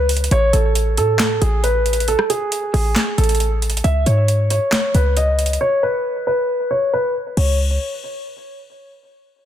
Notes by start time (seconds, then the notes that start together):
Already playing: C#2
0.09 closed hi-hat, open hi-hat
0.17 closed hi-hat
0.24 closed hi-hat
0.31 A1 C#5, closed hi-hat
0.53 A1 A4, closed hi-hat
0.75 closed hi-hat
0.97 A2 A4, closed hi-hat
1.19 A4, snare, clap, closed hi-hat
1.41 A1 G#4, closed hi-hat
1.64 B4, closed hi-hat
1.86 closed hi-hat
1.93 closed hi-hat
2.00 closed hi-hat
2.08 A4, closed hi-hat
2.19 cross-stick
2.30 G#4, closed hi-hat
2.52 closed hi-hat
2.74 A1 G#4, open hi-hat
2.96 snare, clap, closed hi-hat
3.18 A1 A4, closed hi-hat
3.24 closed hi-hat
3.29 closed hi-hat
3.35 closed hi-hat
3.40 closed hi-hat
3.62 closed hi-hat
3.70 closed hi-hat
3.77 closed hi-hat
3.84 C#2 E5, closed hi-hat
4.06 G#2 C#5, closed hi-hat
4.28 closed hi-hat
4.50 C#5, closed hi-hat
4.72 C#5, snare, clap, closed hi-hat
4.94 C#2 B4, closed hi-hat
5.17 D#5, closed hi-hat
5.39 closed hi-hat
5.46 closed hi-hat
5.53 closed hi-hat
5.61 C#5
5.83 B4
6.27 B4
6.71 C#5
6.93 B4
7.37 C#2 C#5, crash